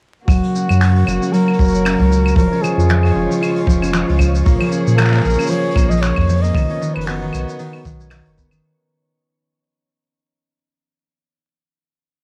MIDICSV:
0, 0, Header, 1, 7, 480
1, 0, Start_track
1, 0, Key_signature, 6, "major"
1, 0, Tempo, 521739
1, 262, Time_signature, 4, 2, 24, 8
1, 11257, End_track
2, 0, Start_track
2, 0, Title_t, "Synth texture"
2, 0, Program_c, 0, 99
2, 274, Note_on_c, 0, 85, 83
2, 275, Note_on_c, 0, 73, 80
2, 7959, Note_off_c, 0, 85, 0
2, 7960, Note_off_c, 0, 73, 0
2, 11257, End_track
3, 0, Start_track
3, 0, Title_t, "Flugelhorn"
3, 0, Program_c, 1, 56
3, 258, Note_on_c, 1, 66, 92
3, 1220, Note_on_c, 1, 70, 104
3, 1233, Note_off_c, 1, 66, 0
3, 2173, Note_off_c, 1, 70, 0
3, 2178, Note_on_c, 1, 70, 103
3, 2411, Note_on_c, 1, 68, 92
3, 2425, Note_off_c, 1, 70, 0
3, 3377, Note_off_c, 1, 68, 0
3, 4575, Note_on_c, 1, 70, 100
3, 5060, Note_on_c, 1, 73, 96
3, 5074, Note_off_c, 1, 70, 0
3, 5425, Note_on_c, 1, 75, 104
3, 5439, Note_off_c, 1, 73, 0
3, 5535, Note_on_c, 1, 73, 109
3, 5549, Note_off_c, 1, 75, 0
3, 5905, Note_on_c, 1, 75, 98
3, 5919, Note_off_c, 1, 73, 0
3, 6386, Note_on_c, 1, 71, 93
3, 6399, Note_off_c, 1, 75, 0
3, 6502, Note_on_c, 1, 66, 81
3, 6516, Note_off_c, 1, 71, 0
3, 7702, Note_off_c, 1, 66, 0
3, 11257, End_track
4, 0, Start_track
4, 0, Title_t, "String quartet"
4, 0, Program_c, 2, 48
4, 250, Note_on_c, 2, 49, 69
4, 252, Note_on_c, 2, 66, 81
4, 253, Note_on_c, 2, 58, 60
4, 2158, Note_off_c, 2, 58, 0
4, 2158, Note_off_c, 2, 66, 0
4, 2174, Note_on_c, 2, 65, 76
4, 2177, Note_on_c, 2, 56, 67
4, 4079, Note_off_c, 2, 65, 0
4, 4080, Note_off_c, 2, 56, 0
4, 4106, Note_on_c, 2, 58, 67
4, 4106, Note_on_c, 2, 68, 84
4, 6005, Note_off_c, 2, 58, 0
4, 6005, Note_off_c, 2, 68, 0
4, 6016, Note_on_c, 2, 63, 86
4, 6019, Note_on_c, 2, 59, 72
4, 7899, Note_off_c, 2, 49, 0
4, 7920, Note_off_c, 2, 63, 0
4, 7922, Note_off_c, 2, 59, 0
4, 11257, End_track
5, 0, Start_track
5, 0, Title_t, "Harp"
5, 0, Program_c, 3, 46
5, 263, Note_on_c, 3, 54, 73
5, 505, Note_on_c, 3, 61, 63
5, 626, Note_off_c, 3, 54, 0
5, 637, Note_on_c, 3, 54, 72
5, 745, Note_on_c, 3, 66, 73
5, 974, Note_off_c, 3, 54, 0
5, 985, Note_on_c, 3, 54, 88
5, 1114, Note_off_c, 3, 61, 0
5, 1117, Note_on_c, 3, 61, 63
5, 1215, Note_off_c, 3, 54, 0
5, 1226, Note_on_c, 3, 54, 73
5, 1356, Note_off_c, 3, 66, 0
5, 1360, Note_on_c, 3, 66, 61
5, 1453, Note_off_c, 3, 54, 0
5, 1464, Note_on_c, 3, 54, 74
5, 1700, Note_off_c, 3, 61, 0
5, 1704, Note_on_c, 3, 61, 74
5, 1829, Note_off_c, 3, 54, 0
5, 1840, Note_on_c, 3, 54, 74
5, 1939, Note_off_c, 3, 66, 0
5, 1943, Note_on_c, 3, 66, 73
5, 2180, Note_on_c, 3, 53, 91
5, 2228, Note_off_c, 3, 54, 0
5, 2235, Note_off_c, 3, 66, 0
5, 2313, Note_off_c, 3, 61, 0
5, 2316, Note_on_c, 3, 61, 68
5, 2411, Note_off_c, 3, 53, 0
5, 2422, Note_on_c, 3, 53, 68
5, 2559, Note_on_c, 3, 65, 70
5, 2656, Note_off_c, 3, 53, 0
5, 2667, Note_on_c, 3, 53, 78
5, 2900, Note_off_c, 3, 61, 0
5, 2904, Note_on_c, 3, 61, 67
5, 3022, Note_off_c, 3, 53, 0
5, 3033, Note_on_c, 3, 53, 69
5, 3135, Note_off_c, 3, 65, 0
5, 3138, Note_on_c, 3, 65, 69
5, 3362, Note_off_c, 3, 53, 0
5, 3373, Note_on_c, 3, 53, 99
5, 3510, Note_off_c, 3, 61, 0
5, 3513, Note_on_c, 3, 61, 69
5, 3608, Note_off_c, 3, 53, 0
5, 3619, Note_on_c, 3, 53, 79
5, 3748, Note_off_c, 3, 65, 0
5, 3752, Note_on_c, 3, 65, 69
5, 3846, Note_off_c, 3, 53, 0
5, 3857, Note_on_c, 3, 53, 72
5, 4099, Note_on_c, 3, 58, 79
5, 4148, Note_off_c, 3, 53, 0
5, 4233, Note_on_c, 3, 53, 76
5, 4339, Note_off_c, 3, 61, 0
5, 4343, Note_on_c, 3, 61, 66
5, 4570, Note_off_c, 3, 53, 0
5, 4581, Note_on_c, 3, 53, 99
5, 4711, Note_off_c, 3, 58, 0
5, 4715, Note_on_c, 3, 58, 70
5, 4807, Note_off_c, 3, 53, 0
5, 4818, Note_on_c, 3, 53, 71
5, 4948, Note_off_c, 3, 61, 0
5, 4952, Note_on_c, 3, 61, 77
5, 5049, Note_off_c, 3, 53, 0
5, 5060, Note_on_c, 3, 53, 73
5, 5295, Note_off_c, 3, 58, 0
5, 5299, Note_on_c, 3, 58, 78
5, 5426, Note_off_c, 3, 53, 0
5, 5437, Note_on_c, 3, 53, 73
5, 5542, Note_off_c, 3, 61, 0
5, 5546, Note_on_c, 3, 61, 73
5, 5775, Note_off_c, 3, 53, 0
5, 5786, Note_on_c, 3, 53, 92
5, 5917, Note_off_c, 3, 58, 0
5, 5920, Note_on_c, 3, 58, 73
5, 6029, Note_on_c, 3, 51, 74
5, 6068, Note_off_c, 3, 53, 0
5, 6073, Note_off_c, 3, 65, 0
5, 6163, Note_off_c, 3, 61, 0
5, 6167, Note_on_c, 3, 61, 78
5, 6257, Note_off_c, 3, 51, 0
5, 6268, Note_on_c, 3, 51, 68
5, 6507, Note_on_c, 3, 59, 82
5, 6562, Note_off_c, 3, 58, 0
5, 6634, Note_off_c, 3, 51, 0
5, 6645, Note_on_c, 3, 51, 67
5, 6748, Note_off_c, 3, 61, 0
5, 6752, Note_on_c, 3, 61, 75
5, 6972, Note_off_c, 3, 51, 0
5, 6983, Note_on_c, 3, 51, 95
5, 7117, Note_off_c, 3, 59, 0
5, 7121, Note_on_c, 3, 59, 69
5, 7218, Note_off_c, 3, 51, 0
5, 7229, Note_on_c, 3, 51, 78
5, 7362, Note_off_c, 3, 61, 0
5, 7365, Note_on_c, 3, 61, 79
5, 7456, Note_off_c, 3, 51, 0
5, 7467, Note_on_c, 3, 51, 81
5, 7697, Note_off_c, 3, 59, 0
5, 7701, Note_on_c, 3, 59, 73
5, 7821, Note_off_c, 3, 51, 0
5, 7832, Note_on_c, 3, 51, 80
5, 7988, Note_off_c, 3, 51, 0
5, 10031, Note_off_c, 3, 61, 0
5, 10558, Note_off_c, 3, 59, 0
5, 11257, End_track
6, 0, Start_track
6, 0, Title_t, "Sub bass"
6, 0, Program_c, 4, 38
6, 261, Note_on_c, 4, 30, 90
6, 370, Note_off_c, 4, 30, 0
6, 643, Note_on_c, 4, 42, 88
6, 953, Note_off_c, 4, 42, 0
6, 982, Note_on_c, 4, 30, 92
6, 1091, Note_off_c, 4, 30, 0
6, 1466, Note_on_c, 4, 30, 80
6, 1797, Note_off_c, 4, 30, 0
6, 1838, Note_on_c, 4, 37, 73
6, 2150, Note_off_c, 4, 37, 0
6, 2176, Note_on_c, 4, 29, 88
6, 2288, Note_off_c, 4, 29, 0
6, 2552, Note_on_c, 4, 41, 85
6, 2867, Note_off_c, 4, 41, 0
6, 2899, Note_on_c, 4, 29, 96
6, 3009, Note_off_c, 4, 29, 0
6, 3378, Note_on_c, 4, 29, 88
6, 3713, Note_off_c, 4, 29, 0
6, 3766, Note_on_c, 4, 37, 78
6, 4074, Note_off_c, 4, 37, 0
6, 4112, Note_on_c, 4, 34, 90
6, 4215, Note_off_c, 4, 34, 0
6, 4480, Note_on_c, 4, 46, 89
6, 4791, Note_off_c, 4, 46, 0
6, 4827, Note_on_c, 4, 34, 94
6, 4933, Note_off_c, 4, 34, 0
6, 5299, Note_on_c, 4, 34, 86
6, 5633, Note_off_c, 4, 34, 0
6, 5683, Note_on_c, 4, 41, 78
6, 5993, Note_off_c, 4, 41, 0
6, 6024, Note_on_c, 4, 35, 91
6, 6132, Note_off_c, 4, 35, 0
6, 6406, Note_on_c, 4, 30, 86
6, 6714, Note_off_c, 4, 30, 0
6, 6751, Note_on_c, 4, 35, 91
6, 6855, Note_off_c, 4, 35, 0
6, 7228, Note_on_c, 4, 35, 89
6, 7558, Note_off_c, 4, 35, 0
6, 7605, Note_on_c, 4, 30, 82
6, 7914, Note_off_c, 4, 30, 0
6, 11257, End_track
7, 0, Start_track
7, 0, Title_t, "Drums"
7, 256, Note_on_c, 9, 36, 116
7, 256, Note_on_c, 9, 46, 69
7, 266, Note_on_c, 9, 75, 61
7, 274, Note_on_c, 9, 82, 48
7, 348, Note_off_c, 9, 36, 0
7, 348, Note_off_c, 9, 46, 0
7, 358, Note_off_c, 9, 75, 0
7, 366, Note_off_c, 9, 82, 0
7, 399, Note_on_c, 9, 46, 58
7, 491, Note_off_c, 9, 46, 0
7, 510, Note_on_c, 9, 82, 71
7, 602, Note_off_c, 9, 82, 0
7, 637, Note_on_c, 9, 75, 72
7, 655, Note_on_c, 9, 82, 54
7, 729, Note_off_c, 9, 75, 0
7, 746, Note_on_c, 9, 26, 92
7, 747, Note_off_c, 9, 82, 0
7, 748, Note_on_c, 9, 46, 65
7, 757, Note_on_c, 9, 82, 45
7, 838, Note_off_c, 9, 26, 0
7, 840, Note_off_c, 9, 46, 0
7, 849, Note_off_c, 9, 82, 0
7, 881, Note_on_c, 9, 46, 52
7, 973, Note_off_c, 9, 46, 0
7, 985, Note_on_c, 9, 75, 69
7, 996, Note_on_c, 9, 82, 80
7, 1077, Note_off_c, 9, 75, 0
7, 1088, Note_off_c, 9, 82, 0
7, 1126, Note_on_c, 9, 82, 50
7, 1218, Note_off_c, 9, 82, 0
7, 1227, Note_on_c, 9, 46, 71
7, 1233, Note_on_c, 9, 82, 46
7, 1319, Note_off_c, 9, 46, 0
7, 1325, Note_off_c, 9, 82, 0
7, 1360, Note_on_c, 9, 75, 61
7, 1409, Note_on_c, 9, 46, 53
7, 1452, Note_off_c, 9, 75, 0
7, 1463, Note_on_c, 9, 36, 97
7, 1466, Note_on_c, 9, 82, 71
7, 1501, Note_off_c, 9, 46, 0
7, 1509, Note_off_c, 9, 82, 0
7, 1509, Note_on_c, 9, 82, 61
7, 1544, Note_off_c, 9, 82, 0
7, 1544, Note_on_c, 9, 82, 47
7, 1555, Note_off_c, 9, 36, 0
7, 1604, Note_off_c, 9, 82, 0
7, 1604, Note_on_c, 9, 82, 55
7, 1696, Note_off_c, 9, 82, 0
7, 1703, Note_on_c, 9, 75, 73
7, 1704, Note_on_c, 9, 46, 60
7, 1711, Note_on_c, 9, 26, 94
7, 1713, Note_on_c, 9, 82, 42
7, 1795, Note_off_c, 9, 75, 0
7, 1796, Note_off_c, 9, 46, 0
7, 1803, Note_off_c, 9, 26, 0
7, 1805, Note_off_c, 9, 82, 0
7, 1835, Note_on_c, 9, 46, 49
7, 1836, Note_on_c, 9, 36, 56
7, 1927, Note_off_c, 9, 46, 0
7, 1928, Note_off_c, 9, 36, 0
7, 1951, Note_on_c, 9, 82, 79
7, 2043, Note_off_c, 9, 82, 0
7, 2077, Note_on_c, 9, 75, 63
7, 2096, Note_on_c, 9, 82, 60
7, 2169, Note_off_c, 9, 75, 0
7, 2171, Note_on_c, 9, 36, 105
7, 2183, Note_on_c, 9, 46, 67
7, 2188, Note_off_c, 9, 82, 0
7, 2193, Note_on_c, 9, 82, 53
7, 2263, Note_off_c, 9, 36, 0
7, 2275, Note_off_c, 9, 46, 0
7, 2285, Note_off_c, 9, 82, 0
7, 2324, Note_on_c, 9, 46, 49
7, 2416, Note_off_c, 9, 46, 0
7, 2429, Note_on_c, 9, 82, 72
7, 2431, Note_on_c, 9, 75, 72
7, 2521, Note_off_c, 9, 82, 0
7, 2523, Note_off_c, 9, 75, 0
7, 2574, Note_on_c, 9, 82, 61
7, 2661, Note_on_c, 9, 46, 69
7, 2666, Note_off_c, 9, 82, 0
7, 2669, Note_on_c, 9, 26, 107
7, 2678, Note_on_c, 9, 82, 50
7, 2753, Note_off_c, 9, 46, 0
7, 2761, Note_off_c, 9, 26, 0
7, 2770, Note_off_c, 9, 82, 0
7, 2791, Note_on_c, 9, 75, 66
7, 2804, Note_on_c, 9, 46, 52
7, 2883, Note_off_c, 9, 75, 0
7, 2896, Note_off_c, 9, 46, 0
7, 3045, Note_on_c, 9, 46, 45
7, 3051, Note_on_c, 9, 82, 52
7, 3137, Note_off_c, 9, 46, 0
7, 3143, Note_off_c, 9, 82, 0
7, 3150, Note_on_c, 9, 46, 67
7, 3154, Note_on_c, 9, 75, 72
7, 3158, Note_on_c, 9, 82, 45
7, 3242, Note_off_c, 9, 46, 0
7, 3246, Note_off_c, 9, 75, 0
7, 3250, Note_off_c, 9, 82, 0
7, 3277, Note_on_c, 9, 46, 48
7, 3369, Note_off_c, 9, 46, 0
7, 3378, Note_on_c, 9, 36, 97
7, 3400, Note_on_c, 9, 82, 87
7, 3470, Note_off_c, 9, 36, 0
7, 3492, Note_off_c, 9, 82, 0
7, 3519, Note_on_c, 9, 75, 60
7, 3530, Note_on_c, 9, 82, 56
7, 3611, Note_off_c, 9, 75, 0
7, 3620, Note_on_c, 9, 26, 94
7, 3622, Note_off_c, 9, 82, 0
7, 3635, Note_on_c, 9, 82, 49
7, 3712, Note_off_c, 9, 26, 0
7, 3727, Note_off_c, 9, 82, 0
7, 3766, Note_on_c, 9, 46, 56
7, 3856, Note_on_c, 9, 75, 70
7, 3858, Note_off_c, 9, 46, 0
7, 3861, Note_on_c, 9, 36, 55
7, 3875, Note_on_c, 9, 82, 74
7, 3948, Note_off_c, 9, 75, 0
7, 3953, Note_off_c, 9, 36, 0
7, 3967, Note_off_c, 9, 82, 0
7, 3997, Note_on_c, 9, 46, 42
7, 4003, Note_on_c, 9, 82, 52
7, 4089, Note_off_c, 9, 46, 0
7, 4095, Note_off_c, 9, 82, 0
7, 4098, Note_on_c, 9, 46, 66
7, 4107, Note_on_c, 9, 36, 120
7, 4111, Note_on_c, 9, 82, 46
7, 4190, Note_off_c, 9, 46, 0
7, 4199, Note_off_c, 9, 36, 0
7, 4203, Note_off_c, 9, 82, 0
7, 4235, Note_on_c, 9, 46, 54
7, 4238, Note_on_c, 9, 75, 75
7, 4327, Note_off_c, 9, 46, 0
7, 4330, Note_off_c, 9, 75, 0
7, 4344, Note_on_c, 9, 82, 80
7, 4436, Note_off_c, 9, 82, 0
7, 4485, Note_on_c, 9, 82, 58
7, 4577, Note_off_c, 9, 82, 0
7, 4582, Note_on_c, 9, 75, 67
7, 4585, Note_on_c, 9, 46, 73
7, 4586, Note_on_c, 9, 26, 94
7, 4619, Note_off_c, 9, 26, 0
7, 4619, Note_on_c, 9, 26, 77
7, 4653, Note_off_c, 9, 26, 0
7, 4653, Note_on_c, 9, 26, 62
7, 4674, Note_off_c, 9, 75, 0
7, 4677, Note_off_c, 9, 46, 0
7, 4683, Note_off_c, 9, 26, 0
7, 4683, Note_on_c, 9, 26, 49
7, 4717, Note_off_c, 9, 26, 0
7, 4717, Note_on_c, 9, 26, 38
7, 4718, Note_on_c, 9, 46, 48
7, 4743, Note_off_c, 9, 26, 0
7, 4743, Note_on_c, 9, 26, 33
7, 4769, Note_off_c, 9, 26, 0
7, 4769, Note_on_c, 9, 26, 28
7, 4797, Note_off_c, 9, 26, 0
7, 4797, Note_on_c, 9, 26, 20
7, 4810, Note_off_c, 9, 46, 0
7, 4827, Note_on_c, 9, 82, 38
7, 4873, Note_off_c, 9, 82, 0
7, 4873, Note_on_c, 9, 82, 44
7, 4889, Note_off_c, 9, 26, 0
7, 4908, Note_off_c, 9, 82, 0
7, 4908, Note_on_c, 9, 82, 47
7, 4958, Note_on_c, 9, 75, 66
7, 4962, Note_off_c, 9, 82, 0
7, 4962, Note_on_c, 9, 82, 62
7, 4989, Note_off_c, 9, 82, 0
7, 4989, Note_on_c, 9, 82, 67
7, 5032, Note_off_c, 9, 82, 0
7, 5032, Note_on_c, 9, 82, 72
7, 5050, Note_off_c, 9, 75, 0
7, 5065, Note_on_c, 9, 46, 68
7, 5066, Note_off_c, 9, 82, 0
7, 5066, Note_on_c, 9, 82, 50
7, 5157, Note_off_c, 9, 46, 0
7, 5158, Note_off_c, 9, 82, 0
7, 5249, Note_on_c, 9, 46, 52
7, 5296, Note_on_c, 9, 36, 101
7, 5296, Note_on_c, 9, 75, 65
7, 5308, Note_on_c, 9, 82, 78
7, 5341, Note_off_c, 9, 46, 0
7, 5388, Note_off_c, 9, 36, 0
7, 5388, Note_off_c, 9, 75, 0
7, 5400, Note_off_c, 9, 82, 0
7, 5438, Note_on_c, 9, 82, 60
7, 5491, Note_on_c, 9, 46, 65
7, 5530, Note_off_c, 9, 82, 0
7, 5544, Note_on_c, 9, 26, 88
7, 5552, Note_on_c, 9, 82, 49
7, 5583, Note_off_c, 9, 46, 0
7, 5636, Note_off_c, 9, 26, 0
7, 5644, Note_off_c, 9, 82, 0
7, 5670, Note_on_c, 9, 75, 69
7, 5680, Note_on_c, 9, 36, 61
7, 5681, Note_on_c, 9, 46, 26
7, 5709, Note_off_c, 9, 46, 0
7, 5709, Note_on_c, 9, 46, 32
7, 5737, Note_off_c, 9, 46, 0
7, 5737, Note_on_c, 9, 46, 36
7, 5762, Note_off_c, 9, 75, 0
7, 5766, Note_off_c, 9, 46, 0
7, 5766, Note_on_c, 9, 46, 39
7, 5772, Note_off_c, 9, 36, 0
7, 5790, Note_off_c, 9, 46, 0
7, 5790, Note_on_c, 9, 46, 42
7, 5790, Note_on_c, 9, 82, 84
7, 5825, Note_off_c, 9, 46, 0
7, 5825, Note_on_c, 9, 46, 45
7, 5861, Note_off_c, 9, 46, 0
7, 5861, Note_on_c, 9, 46, 51
7, 5882, Note_off_c, 9, 82, 0
7, 5896, Note_off_c, 9, 46, 0
7, 5896, Note_on_c, 9, 46, 50
7, 5914, Note_off_c, 9, 46, 0
7, 5914, Note_on_c, 9, 46, 47
7, 5926, Note_on_c, 9, 82, 57
7, 6006, Note_off_c, 9, 46, 0
7, 6018, Note_off_c, 9, 82, 0
7, 6021, Note_on_c, 9, 36, 127
7, 6027, Note_on_c, 9, 75, 77
7, 6035, Note_on_c, 9, 46, 70
7, 6041, Note_on_c, 9, 82, 47
7, 6113, Note_off_c, 9, 36, 0
7, 6119, Note_off_c, 9, 75, 0
7, 6127, Note_off_c, 9, 46, 0
7, 6133, Note_off_c, 9, 82, 0
7, 6156, Note_on_c, 9, 46, 56
7, 6248, Note_off_c, 9, 46, 0
7, 6277, Note_on_c, 9, 82, 83
7, 6369, Note_off_c, 9, 82, 0
7, 6400, Note_on_c, 9, 75, 74
7, 6448, Note_on_c, 9, 46, 78
7, 6492, Note_off_c, 9, 75, 0
7, 6507, Note_on_c, 9, 26, 86
7, 6516, Note_on_c, 9, 82, 46
7, 6540, Note_off_c, 9, 46, 0
7, 6599, Note_off_c, 9, 26, 0
7, 6608, Note_off_c, 9, 82, 0
7, 6635, Note_on_c, 9, 46, 48
7, 6727, Note_off_c, 9, 46, 0
7, 6741, Note_on_c, 9, 75, 66
7, 6756, Note_on_c, 9, 82, 91
7, 6833, Note_off_c, 9, 75, 0
7, 6848, Note_off_c, 9, 82, 0
7, 6877, Note_on_c, 9, 46, 43
7, 6891, Note_on_c, 9, 82, 60
7, 6969, Note_off_c, 9, 46, 0
7, 6982, Note_on_c, 9, 46, 67
7, 6983, Note_off_c, 9, 82, 0
7, 6986, Note_on_c, 9, 82, 47
7, 7074, Note_off_c, 9, 46, 0
7, 7078, Note_off_c, 9, 82, 0
7, 7114, Note_on_c, 9, 75, 60
7, 7118, Note_on_c, 9, 46, 47
7, 7206, Note_off_c, 9, 75, 0
7, 7210, Note_off_c, 9, 46, 0
7, 7226, Note_on_c, 9, 36, 98
7, 7227, Note_on_c, 9, 82, 86
7, 7318, Note_off_c, 9, 36, 0
7, 7319, Note_off_c, 9, 82, 0
7, 7365, Note_on_c, 9, 82, 56
7, 7456, Note_on_c, 9, 75, 72
7, 7457, Note_off_c, 9, 82, 0
7, 7461, Note_on_c, 9, 46, 74
7, 7462, Note_on_c, 9, 26, 93
7, 7469, Note_on_c, 9, 82, 55
7, 7548, Note_off_c, 9, 75, 0
7, 7553, Note_off_c, 9, 46, 0
7, 7554, Note_off_c, 9, 26, 0
7, 7561, Note_off_c, 9, 82, 0
7, 7593, Note_on_c, 9, 46, 55
7, 7685, Note_off_c, 9, 46, 0
7, 7710, Note_on_c, 9, 36, 60
7, 7711, Note_on_c, 9, 82, 88
7, 7802, Note_off_c, 9, 36, 0
7, 7803, Note_off_c, 9, 82, 0
7, 7831, Note_on_c, 9, 75, 67
7, 7835, Note_on_c, 9, 46, 49
7, 7841, Note_on_c, 9, 82, 62
7, 7923, Note_off_c, 9, 75, 0
7, 7927, Note_off_c, 9, 46, 0
7, 7933, Note_off_c, 9, 82, 0
7, 11257, End_track
0, 0, End_of_file